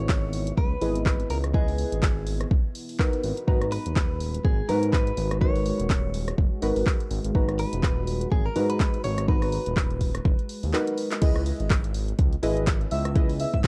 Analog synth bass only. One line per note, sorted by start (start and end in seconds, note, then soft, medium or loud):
0.00 0.52 G#1 loud
0.57 0.74 C#2 medium
0.82 1.24 G#1 medium
1.30 1.84 C#2 loud
1.92 2.45 G#1 medium
2.51 2.60 B1 loud
3.24 3.33 G#1 medium
3.48 3.78 G#1 medium
3.86 4.39 D#1 medium
4.45 4.62 G#1 medium
4.69 5.11 G#2 medium
5.17 5.72 G#1 loud
5.80 6.32 D#1 medium
6.38 6.47 F#1 medium
6.62 6.71 G#1 loud
6.76 6.83 G#1 medium
7.11 7.20 G#1 loud
7.25 7.31 G#1 medium
7.35 7.65 G#1 loud
7.73 8.26 D#1 medium
8.32 8.49 G#1 medium
8.56 8.98 G#2 medium
9.04 9.59 G#1 loud
9.67 10.19 D#1 medium
10.25 10.34 F#1 loud
10.63 10.74 D#2 medium
11.22 11.52 C#2 loud
11.60 12.13 G#1 medium
12.19 12.36 C#2 medium
12.43 12.86 G#1 medium
12.91 13.46 C#2 loud
13.54 13.67 G#1 medium